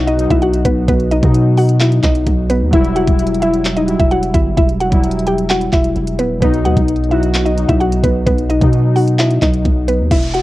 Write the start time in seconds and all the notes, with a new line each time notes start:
Already playing: B1 B2 F#3 D#4 F#4
0.07 D#4 D#5, closed hi-hat
0.16 B2 F#3, closed hi-hat
0.21 D#4
0.30 B1 E4 E5, kick, closed hi-hat
0.42 F#4 F#5, closed hi-hat
0.53 closed hi-hat
0.65 B1 B3 B4, kick, closed hi-hat
0.88 B1 B3 B4, kick, closed hi-hat
1.00 closed hi-hat
1.11 D#4 D#5, closed hi-hat
1.21 B2 F#3, kick, closed hi-hat
1.25 D#4
1.34 closed hi-hat
1.57 F#4 F#5, open hi-hat
1.69 closed hi-hat
1.80 E4 E5, clap, closed hi-hat
1.92 closed hi-hat
2.04 B1 D#4 D#5, kick, clap, closed hi-hat
2.15 closed hi-hat
2.27 B1, kick, closed hi-hat
2.50 B3 B4, closed hi-hat
2.61 D#2
2.71 E1 F#3 G3 E4 E5, kick, closed hi-hat
2.75 E4
2.84 closed hi-hat
2.96 F#4 F#5, closed hi-hat
3.07 E1, kick, closed hi-hat
3.19 closed hi-hat
3.27 closed hi-hat
3.34 closed hi-hat
3.40 F#3 G3 E4 E5, closed hi-hat
3.44 E4
3.54 closed hi-hat
3.65 clap, closed hi-hat
3.77 D#4 D#5, closed hi-hat
3.86 F#3 G3, closed hi-hat
3.90 E4
4.00 E1 E4 E5, kick, closed hi-hat
4.11 F#4 F#5, closed hi-hat
4.23 closed hi-hat
4.34 G1 E4 E5, kick, closed hi-hat
4.57 E1 E4 E5, kick, closed hi-hat
4.69 closed hi-hat
4.80 F#4 F#5, closed hi-hat
4.90 E1 F#3 G3, kick, closed hi-hat
4.94 E4
5.04 closed hi-hat
5.11 closed hi-hat
5.19 closed hi-hat
5.27 G4 G5, closed hi-hat
5.38 closed hi-hat
5.50 F#4 F#5, clap, closed hi-hat
5.61 closed hi-hat
5.73 E1 E4 E5, kick, clap, closed hi-hat
5.84 closed hi-hat
5.96 E1, closed hi-hat
6.07 closed hi-hat
6.19 D#1 B3 B4, closed hi-hat
6.30 E1
6.40 B1 B2 F#3 B3 B4, kick, closed hi-hat
6.44 D#4
6.54 closed hi-hat
6.65 D#2 F#4 F#5, closed hi-hat
6.77 B1, kick, closed hi-hat
6.88 closed hi-hat
6.96 closed hi-hat
7.04 closed hi-hat
7.09 B2 F#3 E4 E5, closed hi-hat
7.13 F#4
7.23 closed hi-hat
7.34 clap, closed hi-hat
7.45 D#4 D#5, closed hi-hat
7.55 B2 F#3, closed hi-hat
7.59 D#4
7.68 B1 E4 E5, kick, closed hi-hat
7.80 F#4 F#5, closed hi-hat
7.92 closed hi-hat
8.03 B1 B3 B4, kick, closed hi-hat
8.26 B1 B3 B4, kick, closed hi-hat
8.38 closed hi-hat
8.49 D#4 D#5, closed hi-hat
8.59 B2 F#3, kick, closed hi-hat
8.63 D#4
8.73 closed hi-hat
8.96 F#4 F#5, open hi-hat
9.07 closed hi-hat
9.19 E4 E5, clap, closed hi-hat
9.31 closed hi-hat
9.42 B1 D#4 D#5, kick, clap, closed hi-hat
9.54 closed hi-hat
9.65 B1, kick, closed hi-hat
9.88 B3 B4, closed hi-hat
10.00 D#2
10.11 E1 E4 E5, kick, closed hi-hat, crash, downlifter
10.23 closed hi-hat
10.34 F#4 F#5, closed hi-hat